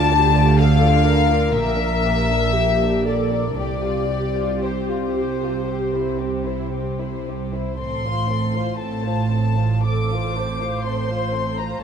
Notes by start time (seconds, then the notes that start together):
Already playing: D2 D3 F4 D5 A5
0.11 D4 G4 A4
0.35 F4 D5
0.58 D4 A4 F5
0.82 F4 D5
1.06 D4 A4 A#4
1.30 F4 D5
1.53 A#1 A#2 A#3 G4 E5
1.80 D4 A#4
2.05 A#3 G4
2.29 D4 A#4
2.54 A#3 G4
2.82 D4 A#4
3.06 A#3 G4 A4 D5
3.34 D4 A#4
3.57 C2 C3 G4 D5
3.85 F4
4.11 G4
4.37 F4
4.63 G4 C5
4.88 F4
5.15 G4
5.41 F4
5.66 C4 G4
5.93 E4 C5
6.19 C4 G4
6.47 E4 C5
6.73 C4 G4
7.00 E4 C5
7.27 C4 G4
7.53 E4 C5
7.78 A1 A2 C4 A4 C6
8.04 F4 C5
8.29 C4 A4
8.54 F4 C5
8.79 C4 A4 A5
9.04 F4 C5
9.31 C4 A4
9.58 F4 C5
9.85 C4 A4 D6
10.11 F4 C5
10.36 C4 A4 C5
10.61 F4 C5
10.86 C4 A4 C6
11.09 F4 C5
11.33 C4 A4
11.57 F4 C5 A#5